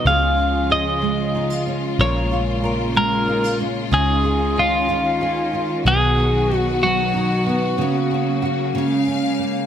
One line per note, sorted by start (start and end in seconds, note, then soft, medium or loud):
0.00 0.12 F#3 medium
0.00 0.12 B3 medium
0.00 0.12 D#4 medium
0.05 1.95 C#2 medium
0.05 1.97 C#3 medium
0.05 1.99 C#3 medium
0.05 1.97 F3 medium
0.05 5.81 G#3 medium
0.05 5.81 F4 medium
0.05 0.69 G#4 medium
0.05 0.72 F5 medium
0.39 1.34 F4 medium
0.70 2.00 G#4 medium
0.70 1.64 D#5 medium
1.02 2.67 G#3 medium
1.35 1.50 D#4 medium
1.50 2.05 F4 soft
1.67 3.31 C#4 medium
1.99 3.88 A#1 medium
1.99 3.92 A#2 medium
1.99 3.90 C#3 medium
1.99 3.90 A#3 medium
1.99 2.62 A#4 medium
1.99 2.93 C#5 medium
2.31 3.27 F4 soft
2.64 3.92 A#4 medium
2.95 3.91 G#3 medium
2.95 3.57 A#4 medium
3.28 3.44 D#4 medium
3.44 3.99 F4 soft
3.60 3.90 C#4 medium
3.91 5.81 C#2 medium
3.91 7.75 D#3 medium
3.91 5.85 C#4 medium
3.91 5.84 C#4 soft
3.91 4.59 G#4 medium
3.91 4.56 D#5 medium
4.24 5.20 G#4 medium
4.56 5.83 F4 medium
4.56 5.85 D#5 medium
4.89 5.52 F4 medium
5.21 5.92 G#4 medium
5.53 5.92 F4 medium
5.85 7.74 B1 medium
5.85 7.78 B2 medium
5.85 7.77 F#3 medium
5.85 7.76 B3 medium
5.85 8.72 F#4 medium
5.85 6.51 F#4 medium
5.85 6.57 G#4 loud
6.18 7.13 D#4 soft
6.51 7.77 F#4 medium
6.57 6.83 F#4 loud
6.83 7.85 F#3 medium
6.83 9.04 F#4 medium
7.14 7.85 D#4 medium
7.46 7.85 B3 medium
7.78 8.74 C#3 medium
7.78 8.74 F#3 medium
7.78 9.66 A#3 medium
7.78 8.41 F#4 medium
8.11 9.07 C#4 medium
8.42 8.81 F#4 medium
8.75 9.66 C#3 medium
8.75 9.66 G#3 medium
8.75 9.66 F5 medium
9.07 9.66 C#4 medium
9.39 9.66 A#3 medium